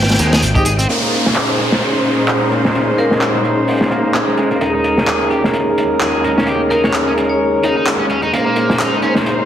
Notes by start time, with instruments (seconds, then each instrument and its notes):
Already playing: picked electric bass G#1, string section C4 G5
0.02 snare, closed hi-hat
0.09 snare, closed hi-hat, tambourine
0.14 snare, closed hi-hat
0.19 picked electric bass D#2, overdriven electric guitar G#3, closed hi-hat, tambourine
0.32 overdriven electric guitar G#4, snare, tambourine
0.42 picked electric bass G#1, closed hi-hat, tambourine
0.55 brass ensemble D#4 G4 G#4 D#5, overdriven electric guitar G4, kick, tambourine
0.65 picked electric bass G#1, overdriven electric guitar G#4, closed hi-hat, tambourine
0.79 overdriven electric guitar C4, closed hi-hat, tambourine
0.89 string section A#2 G#3 C#4 D#4 C5, overdriven electric guitar A#3, brass ensemble C#4 D#4 G#4 A#4 C5, closed hi-hat, downlifter
1.02 overdriven electric guitar A#3
1.13 closed hi-hat
1.26 snare
1.35 overdriven electric guitar D#4, clap, closed hi-hat
1.49 closed hi-hat
1.59 overdriven electric guitar C#4, closed hi-hat
1.72 snare
1.81 closed hi-hat
2.05 closed hi-hat
2.28 overdriven electric guitar D#4, clap, closed hi-hat
2.52 overdriven electric guitar A#3, closed hi-hat
2.65 overdriven electric guitar G#3, snare
2.75 overdriven electric guitar C#4, closed hi-hat
2.98 overdriven electric guitar A#3, vibraphone A#4, closed hi-hat
3.11 overdriven electric guitar G#4, snare
3.21 clap, closed hi-hat
3.35 overdriven electric guitar G#3, closed hi-hat
3.45 closed hi-hat
3.68 open hi-hat
3.81 snare
3.91 overdriven electric guitar A#3, closed hi-hat
4.04 overdriven electric guitar A#3
4.14 vibraphone G#4, clap, closed hi-hat
4.27 overdriven electric guitar G#3, vibraphone G#4
4.37 overdriven electric guitar G#3, closed hi-hat
4.51 overdriven electric guitar A#3, closed hi-hat
4.61 string section D#2 C#3 G#3, brass ensemble C#4 D#4 G#4 A#4, overdriven electric guitar D#4, closed hi-hat
4.74 overdriven electric guitar D#4
4.84 closed hi-hat
4.98 snare
5.07 overdriven electric guitar G#4, clap, closed hi-hat
5.21 closed hi-hat
5.31 overdriven electric guitar G4, closed hi-hat
5.44 snare
5.53 closed hi-hat
5.78 closed hi-hat
6.01 overdriven electric guitar G#4, clap, closed hi-hat
6.24 overdriven electric guitar D#4, closed hi-hat
6.38 overdriven electric guitar C#4, snare
6.47 overdriven electric guitar G4, closed hi-hat
6.70 overdriven electric guitar D#4, vibraphone A#4, closed hi-hat
6.84 overdriven electric guitar C#5, snare
6.93 clap, closed hi-hat
7.07 overdriven electric guitar C#4, closed hi-hat
7.18 closed hi-hat
7.29 vibraphone C#5
7.63 overdriven electric guitar D#4, closed hi-hat
7.77 overdriven electric guitar D#4
7.87 clap, closed hi-hat
8.00 overdriven electric guitar C#4
8.10 overdriven electric guitar C#4, closed hi-hat
8.22 overdriven electric guitar D#4, closed hi-hat
8.33 string section A#2 C#4 D#4 C5, overdriven electric guitar A#3, brass ensemble C#4 D#4 G#4 A#4 C5, closed hi-hat
8.46 overdriven electric guitar A#3
8.56 closed hi-hat
8.70 snare
8.79 overdriven electric guitar D#4, clap, closed hi-hat
8.93 closed hi-hat
9.02 overdriven electric guitar C#4, closed hi-hat
9.15 snare
9.26 closed hi-hat